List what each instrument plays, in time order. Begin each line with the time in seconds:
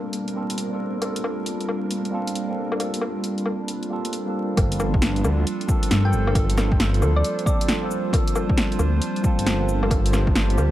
Already playing: tine electric piano G3 A#3 C4 F4 A4, ambient pad G3 D4 F4 A4 C5, synth texture A#3
0.13 closed hi-hat
0.28 closed hi-hat
0.34 tine electric piano G3 A#3 C4 F4 A4
0.50 closed hi-hat
0.58 closed hi-hat
0.70 tine electric piano G3 A#3 C4 F4
0.74 tine electric piano A4
0.98 tine electric piano G3 A#3 C4
1.02 tine electric piano F4, closed hi-hat, low woodblock
1.06 tine electric piano A4
1.16 closed hi-hat
1.24 low woodblock
1.46 closed hi-hat
1.61 closed hi-hat
1.69 low woodblock
1.91 closed hi-hat
2.05 closed hi-hat
2.11 tine electric piano G3 A#3 C4 F4 A4
2.27 closed hi-hat
2.35 closed hi-hat
2.48 tine electric piano G3 A#3 C4 F4
2.52 tine electric piano A4
2.72 low woodblock
2.76 tine electric piano G3 A#3 C4, closed hi-hat, low woodblock
2.82 tine electric piano F4 A4
2.94 closed hi-hat
3.01 low woodblock
3.24 closed hi-hat
3.38 closed hi-hat
3.46 low woodblock
3.68 closed hi-hat
3.83 closed hi-hat
3.89 tine electric piano G3 A#3 C4 F4 A4
4.05 closed hi-hat
4.13 closed hi-hat
4.26 tine electric piano G3 A#3 C4 F4
4.30 tine electric piano A4
4.54 detuned saw bass G1, tine electric piano F3 A#3, kick, closed hi-hat, low woodblock
4.59 tine electric piano C4 A4
4.72 closed hi-hat
4.80 cabasa, low woodblock
4.94 ambient pad A4, kick
5.02 snare, closed hi-hat
5.16 closed hi-hat
5.24 detuned saw bass D2, cabasa, low woodblock
5.30 ambient pad C5
5.47 closed hi-hat
5.61 closed hi-hat
5.67 tine electric piano F3 A#3 C4 A4, kick, cabasa
5.83 closed hi-hat
5.91 detuned saw bass G2, snare, closed hi-hat
6.04 tine electric piano F3 A#3 C4 A4, synth pluck G5
6.13 detuned saw bass G1, cabasa
6.27 low woodblock
6.32 tine electric piano F3 A#3, kick, closed hi-hat, low woodblock
6.37 tine electric piano C4 A4
6.50 closed hi-hat
6.58 snare, cabasa, low woodblock
6.72 kick
6.80 snare, closed hi-hat
6.94 closed hi-hat
7.02 detuned saw bass D2, cabasa, low woodblock
7.16 synth pluck D5
7.24 closed hi-hat
7.39 closed hi-hat
7.45 tine electric piano F3 A#3 C4 A4, synth pluck D5, kick, cabasa
7.61 closed hi-hat
7.68 snare, closed hi-hat
7.81 tine electric piano F3 A#3 C4 A4
7.91 cabasa
8.10 tine electric piano F3 A#3, kick, closed hi-hat, low woodblock
8.15 tine electric piano C4 A4
8.28 closed hi-hat
8.36 cabasa, low woodblock
8.50 kick
8.58 snare, closed hi-hat
8.72 closed hi-hat
8.79 detuned saw bass D2, ambient pad G4, cabasa, low woodblock
9.02 closed hi-hat
9.16 closed hi-hat
9.22 tine electric piano F3 A#3 C4 A4, kick, cabasa
9.38 detuned saw bass G1, closed hi-hat
9.46 snare, closed hi-hat
9.59 tine electric piano F3 A#3 C4 A4
9.69 cabasa
9.83 low woodblock
9.87 tine electric piano F3 A#3, kick, closed hi-hat, low woodblock
9.93 tine electric piano C4 A4
10.06 closed hi-hat
10.13 snare, cabasa, low woodblock
10.27 kick
10.36 snare, closed hi-hat
10.50 closed hi-hat
10.57 detuned saw bass D2, cabasa, low woodblock